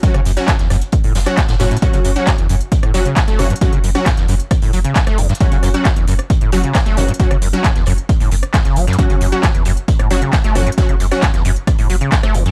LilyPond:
<<
  \new Staff \with { instrumentName = "Synth stab" } { \time 4/4 \key fis \minor \tempo 4 = 134 <fis cis' fis'>16 r8 <fis cis' fis'>16 r4. r16 <fis cis' fis'>16 r8 <fis cis' fis'>16 r16 | <fis cis' fis'>8. <fis cis' fis'>16 r4. <fis cis' fis'>16 r8. <fis cis' fis'>16 r16 | <fis cis' fis'>16 r8 <fis cis' fis'>16 r2. | <fis cis' fis'>8. <fis cis' fis'>16 r4. <fis cis' fis'>16 r8. <fis cis' fis'>16 r16 |
<fis cis' fis'>16 r8 <fis cis' fis'>16 r2. | <fis cis' fis'>8. <fis cis' fis'>16 r4. <fis cis' fis'>16 r8. <fis cis' fis'>16 r16 | <fis cis' fis'>16 r8 <fis cis' fis'>16 r2. | }
  \new Staff \with { instrumentName = "Acid bass" } { \clef bass \time 4/4 \key fis \minor fis,16 cis16 fis,16 r16 fis,16 e,16 fis,16 r8 a,16 fis,16 r16 fis,,16 a,16 a,16 a,16 | fis,16 cis16 fis,16 r16 fis,16 e,16 fis,16 r8 a,16 fis16 cis16 r16 a16 e,16 g,16 | fis,16 cis16 fis,16 r16 fis,16 e,16 fis,16 r8 a,16 fis16 cis16 r16 a16 e,16 g,16 | fis,16 cis16 fis,16 r16 fis,16 e,16 fis,16 r8 a,16 fis16 cis16 r16 a16 e,16 g,16 |
fis,16 cis16 fis,16 r16 fis,16 e,16 fis,16 r8 a,16 fis,16 r16 fis,16 cis16 fis16 fis,16 | fis,16 cis16 fis,16 r16 fis,16 e,16 fis,16 r8 a,16 fis16 cis16 r16 a16 e,16 fis,16 | fis,16 cis16 fis,16 r16 fis,16 e,16 fis,16 r8 a,16 fis16 cis16 r16 a16 e,16 fis,16 | }
  \new Staff \with { instrumentName = "Sub bass" } { \clef bass \time 4/4 \key fis \minor r16 fis,,16 fis,,16 r8 fis,,16 fis,,16 r8 fis,,16 fis,,16 r8 fis,,16 fis,,16 r16 | r16 fis,,16 fis,,16 r8 fis,,16 fis,,16 r8 fis,,16 fis,,16 r8 fis,,16 fis,,16 r16 | r16 fis,,16 fis,,16 r8 fis,,16 fis,,16 r8 fis,,16 fis,,16 r8 fis,,16 fis,,16 r16 | r16 fis,,16 fis,,16 r8 fis,,16 fis,,16 r8 fis,,16 fis,,16 r8 fis,,16 fis,,16 r16 |
r16 fis,,16 fis,,16 r8 fis,,16 fis,,16 r8 fis,,16 fis,,16 r8 fis,,16 fis,,16 r16 | r16 fis,,16 fis,,16 r8 fis,,16 fis,,16 r8 fis,,16 fis,,16 r8 fis,,16 fis,,16 r16 | r16 fis,,16 fis,,16 r8 fis,,16 fis,,16 r8 fis,,16 fis,,16 r8 fis,,16 fis,,16 r16 | }
  \new DrumStaff \with { instrumentName = "Drums" } \drummode { \time 4/4 <hh bd>16 <hh ss>16 <hh hho>16 hh16 <hc hh bd sn>16 <hh sn>16 <hh hho ss>16 hh16 <hh bd>16 hho16 <hh hho sn>16 <hh ss>16 <hc hh bd sn>16 <hh sn>16 <hh hho sn>16 <hh sn>32 hh32 | <hh bd>16 hh16 <hh hho>16 hh16 <hc hh bd ss sn>16 hh16 <hh hho>16 hh16 <hh bd>16 <hh ss>16 <hh hho sn>16 hh16 <hc hh bd sn>16 <hh sn>16 <hh hho ss sn>16 hh32 hh32 | <hh bd>16 hh16 <hh hho>16 <hh ss>16 <hc hh bd sn>16 <hh sn>16 <hh hho>16 hh16 <hh bd ss>16 <hh hho>16 <hh hho>16 hh16 <hc hh bd sn>16 <hh ss sn>16 <hh hho>16 <hh sn>32 hh32 | <hh bd>16 hh16 <hh hho ss>16 hh16 <hc hh bd sn>16 hh16 <hh hho>16 <hh ss>16 <hh bd>16 hh16 <hh hho sn>16 hh16 <hc hh bd ss sn>16 <hh sn>16 <hh hho sn>16 hh32 hh32 |
<hh bd>16 <hh ss>16 <hh hho>16 hh16 <hc hh bd sn>16 <hh sn>16 <hh hho ss>16 hh16 <hh bd>16 <hh hho>16 <hh hho>16 <hh ss>16 <hc hh bd sn>16 <hh sn>16 <hh hho>16 <hh sn>32 hh32 | <hh bd>16 hh16 <hh hho>16 hh16 <hc hh bd ss sn>16 hh16 <hh hho>16 hh16 <hh bd>16 <hh ss>16 <hh hho sn>16 hh16 <hc hh bd sn>16 <hh sn>16 <hh hho ss sn>16 hh32 hh32 | <hh bd>16 hh16 <hh hho>16 <hh ss>16 <hc hh bd sn>16 <hh sn>16 <hh hho>16 hh16 <hh bd ss>16 <hh hho>16 <hh hho>16 hh16 <hc hh bd sn>16 <hh ss sn>16 <hh hho>16 <hh sn>16 | }
>>